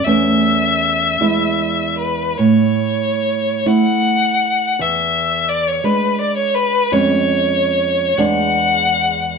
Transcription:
<<
  \new Staff \with { instrumentName = "Violin" } { \time 6/8 \key a \major \tempo 4. = 52 e''2~ e''8 b'8 | cis''4. fis''4. | e''4 d''16 cis''16 b'8 d''16 cis''16 b'8 | cis''4. fis''4. | }
  \new Staff \with { instrumentName = "Nylon-string guitar" } { \clef bass \time 6/8 \key a \major <e, a cis'>4. <e, gis e'>4. | a,4. <a e'>4. | e,4. <gis d'>4. | <eis, gis cis'>4. <e, gis d'>4. | }
>>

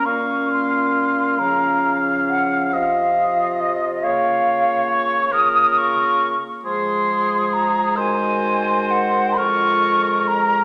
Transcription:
<<
  \new Staff \with { instrumentName = "Flute" } { \time 6/8 \key bes \minor \tempo 4. = 45 des'''8 c'''4 bes''4 ges''8 | f''4 ees''8 f''4 des'''8 | ees'''8 des'''8 r8 c'''4 bes''8 | aes''4 ges''8 des'''4 bes''8 | }
  \new Staff \with { instrumentName = "Oboe" } { \time 6/8 \key bes \minor f''2. | ees''4. des''4. | bes'4 r8 aes'4. | c''4. bes'4. | }
  \new Staff \with { instrumentName = "Clarinet" } { \time 6/8 \key bes \minor des'4. des'4. | f'2. | f'4 r8 aes'4. | ges'4. f'4. | }
  \new Staff \with { instrumentName = "French horn" } { \time 6/8 \key bes \minor bes4. f4.~ | f4. bes4. | bes4 r8 aes4.~ | aes4. aes4. | }
  \new Staff \with { instrumentName = "Bassoon" } { \clef bass \time 6/8 \key bes \minor bes,4. des4. | c4. des4. | des4 r8 f4. | ees4. f,4. | }
>>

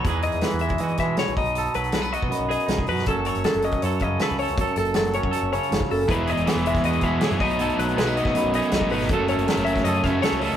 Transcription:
<<
  \new Staff \with { instrumentName = "Clean electric guitar" } { \time 4/4 \key e \major \tempo 4 = 159 b'8 dis''8 b'8 e''8 dis''8 e''8 cis''8 dis''8~ | dis''8 b'8 b'8 dis''4 dis''4 b'8 | a'8 cis''8 a'8 dis''8 cis''8 dis''8 b'8 cis''8~ | cis''8 a'8 a'8 cis''4 cis''4 a'8 |
b'8 dis''8 b'8 e''8 dis''8 e''8 cis''8 dis''8~ | dis''8 b'8 b'8 dis''4 dis''4 b'8 | a'8 cis''8 a'8 e''8 dis''8 e''8 cis''8 dis''8 | }
  \new Staff \with { instrumentName = "Clean electric guitar" } { \time 4/4 \key e \major << { <e gis dis' gis'>8 gis'4 gis8 fis'8 gis8 gis'8 dis'8 | a'4 gis16 b16 fis'8 b8 gis'8 dis'8 dis'8 | <fis cis' a'>8 a'4 cis'8 a'8 cis'8 a'8 a'8 | a'8 a'4 cis'8 a'8 cis'4. |
dis'8 gis'4 gis8 fis'8 gis8 gis'8 dis'8 | a'4 gis16 b16 fis'8 b8 gis'8 dis'8 dis'8 | a'8 a'4 cis'8 a'8 cis'8 a'8 a'8 | } \\ { e,4 e4. b,4 b,8~ | b,8 fis4. fis,4. b,8 | fis,4 fis4. cis4. | fis,4 fis4. cis8 gis,8 fis,8 |
e,4 e4. b,4 b,8~ | b,8 fis4. fis,4. b,8 | fis,4 fis4. cis4. | } >> }
  \new Staff \with { instrumentName = "Overdriven electric guitar" } { \time 4/4 \key e \major r1 | r1 | r1 | r1 |
<e gis b e'>4 <e gis b e'>4. <gis b e'>8 <e gis b e'>8 <b, fis a dis'>8 | <b, fis a dis'>4 <b, fis a dis'>4. <fis a dis'>8 <b, fis a dis'>8 <fis a dis'>8 | <fis, cis fis a cis'>4 <fis, cis fis a cis'>4. <fis a cis'>8 <cis fis a cis'>8 <fis a cis'>8 | }
  \new Staff \with { instrumentName = "Picked electric bass" } { \clef bass \time 4/4 \key e \major e,8. e,16 r16 e,8. e8 e8 r16 b,,16 b,,8~ | b,,8 b,,8 b,,8. b,16 r16 b,,8 r16 b,,8 fis,8 | fis,,8. fis,,16 r16 fis,,8. fis,8 fis,8 r16 cis,8 cis,16~ | cis,16 r16 fis,,8 fis,,8. fis,16 r16 fis,,8 r16 fis,,16 r16 fis,,8 |
e,,8. e,,16 r16 e,,8. e,8 e,8 r16 fis,16 b,,8~ | b,,8 b,,8 b,,8. b,16 r16 b,,8 r16 b,,8 gis,,8 | fis,,8. fis,,16 r16 fis,,8. fis,8 fis,8 r16 cis,8 cis,16 | }
  \new DrumStaff \with { instrumentName = "Drums" } \drummode { \time 4/4 <hh bd>8 hh16 hh16 <hh sn>8 hh16 <hh bd>16 hh16 hh16 <hh bd sn>8 <hh sn>16 hh16 <hho bd>16 hh16 | hh16 hh16 hh16 hh16 <hh sn>16 hh16 hh16 bd16 hh8 hh16 hh16 <hh sn>16 bd16 hho16 sn16 | <hh bd>8 hh16 hh16 <hh sn>16 hh16 hh16 <hh bd>16 hh16 hh16 <hh bd>8 <hh sn>16 hh16 hho16 hh16 | <hh bd>16 hh16 hh16 hh16 <hh sn>16 hh16 hh16 bd16 hh8 hh16 hh16 <hh sn>16 bd16 hho8 |
<hh bd>8 hh16 hh16 <hh sn>16 hh16 hh16 <hh bd sn>16 hh16 hh16 <hh bd>8 <hh sn>16 hh16 <hho bd>16 hh16 | hh16 hh16 hh16 hh16 <hh sn>16 hh16 hh16 <bd sn>16 hh8 hh16 hh16 <hh sn>16 bd16 hho16 sn16 | <hh bd>8 hh16 hh16 <hh sn>16 hh16 hh16 <hh bd sn>16 hh16 hh16 <hh bd sn>8 <hh sn>8 hho16 hh16 | }
>>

